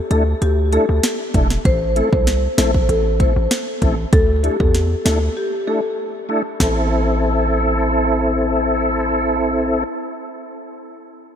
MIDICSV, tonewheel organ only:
0, 0, Header, 1, 2, 480
1, 0, Start_track
1, 0, Key_signature, 0, "minor"
1, 0, Tempo, 618557
1, 1283, Time_signature, 4, 2, 24, 8
1, 8811, End_track
2, 0, Start_track
2, 0, Title_t, "Tonewheel organ"
2, 0, Program_c, 0, 16
2, 79, Note_on_c, 0, 57, 74
2, 81, Note_on_c, 0, 62, 69
2, 83, Note_on_c, 0, 64, 69
2, 85, Note_on_c, 0, 69, 83
2, 183, Note_off_c, 0, 57, 0
2, 184, Note_off_c, 0, 62, 0
2, 185, Note_off_c, 0, 64, 0
2, 186, Note_off_c, 0, 69, 0
2, 560, Note_on_c, 0, 57, 78
2, 562, Note_on_c, 0, 62, 71
2, 564, Note_on_c, 0, 64, 74
2, 566, Note_on_c, 0, 69, 90
2, 663, Note_off_c, 0, 57, 0
2, 664, Note_off_c, 0, 62, 0
2, 665, Note_off_c, 0, 64, 0
2, 666, Note_off_c, 0, 69, 0
2, 1039, Note_on_c, 0, 57, 92
2, 1041, Note_on_c, 0, 62, 80
2, 1043, Note_on_c, 0, 64, 84
2, 1046, Note_on_c, 0, 69, 105
2, 1143, Note_off_c, 0, 57, 0
2, 1144, Note_off_c, 0, 62, 0
2, 1145, Note_off_c, 0, 64, 0
2, 1146, Note_off_c, 0, 69, 0
2, 1519, Note_on_c, 0, 57, 74
2, 1521, Note_on_c, 0, 60, 67
2, 1523, Note_on_c, 0, 64, 69
2, 1526, Note_on_c, 0, 69, 87
2, 1623, Note_off_c, 0, 57, 0
2, 1624, Note_off_c, 0, 60, 0
2, 1625, Note_off_c, 0, 64, 0
2, 1626, Note_off_c, 0, 69, 0
2, 1998, Note_on_c, 0, 57, 75
2, 2000, Note_on_c, 0, 60, 69
2, 2003, Note_on_c, 0, 64, 68
2, 2005, Note_on_c, 0, 69, 83
2, 2102, Note_off_c, 0, 57, 0
2, 2103, Note_off_c, 0, 60, 0
2, 2104, Note_off_c, 0, 64, 0
2, 2105, Note_off_c, 0, 69, 0
2, 2480, Note_on_c, 0, 57, 77
2, 2482, Note_on_c, 0, 60, 72
2, 2484, Note_on_c, 0, 64, 70
2, 2486, Note_on_c, 0, 69, 89
2, 2583, Note_off_c, 0, 57, 0
2, 2584, Note_off_c, 0, 60, 0
2, 2585, Note_off_c, 0, 64, 0
2, 2586, Note_off_c, 0, 69, 0
2, 2959, Note_on_c, 0, 57, 92
2, 2961, Note_on_c, 0, 60, 81
2, 2963, Note_on_c, 0, 64, 79
2, 2965, Note_on_c, 0, 69, 94
2, 3063, Note_off_c, 0, 57, 0
2, 3064, Note_off_c, 0, 60, 0
2, 3064, Note_off_c, 0, 64, 0
2, 3066, Note_off_c, 0, 69, 0
2, 3439, Note_on_c, 0, 57, 73
2, 3440, Note_on_c, 0, 62, 69
2, 3443, Note_on_c, 0, 64, 70
2, 3445, Note_on_c, 0, 69, 82
2, 3542, Note_off_c, 0, 57, 0
2, 3543, Note_off_c, 0, 62, 0
2, 3544, Note_off_c, 0, 64, 0
2, 3546, Note_off_c, 0, 69, 0
2, 3918, Note_on_c, 0, 57, 73
2, 3921, Note_on_c, 0, 62, 70
2, 3923, Note_on_c, 0, 64, 70
2, 3925, Note_on_c, 0, 69, 79
2, 4022, Note_off_c, 0, 57, 0
2, 4023, Note_off_c, 0, 62, 0
2, 4024, Note_off_c, 0, 64, 0
2, 4025, Note_off_c, 0, 69, 0
2, 4399, Note_on_c, 0, 57, 76
2, 4401, Note_on_c, 0, 62, 71
2, 4403, Note_on_c, 0, 64, 72
2, 4405, Note_on_c, 0, 69, 86
2, 4503, Note_off_c, 0, 57, 0
2, 4504, Note_off_c, 0, 62, 0
2, 4505, Note_off_c, 0, 64, 0
2, 4506, Note_off_c, 0, 69, 0
2, 4879, Note_on_c, 0, 57, 92
2, 4881, Note_on_c, 0, 62, 82
2, 4883, Note_on_c, 0, 64, 81
2, 4886, Note_on_c, 0, 69, 98
2, 4983, Note_off_c, 0, 57, 0
2, 4984, Note_off_c, 0, 62, 0
2, 4985, Note_off_c, 0, 64, 0
2, 4986, Note_off_c, 0, 69, 0
2, 5122, Note_on_c, 0, 60, 88
2, 5122, Note_on_c, 0, 64, 78
2, 5122, Note_on_c, 0, 69, 97
2, 7632, Note_off_c, 0, 60, 0
2, 7632, Note_off_c, 0, 64, 0
2, 7632, Note_off_c, 0, 69, 0
2, 8811, End_track
0, 0, End_of_file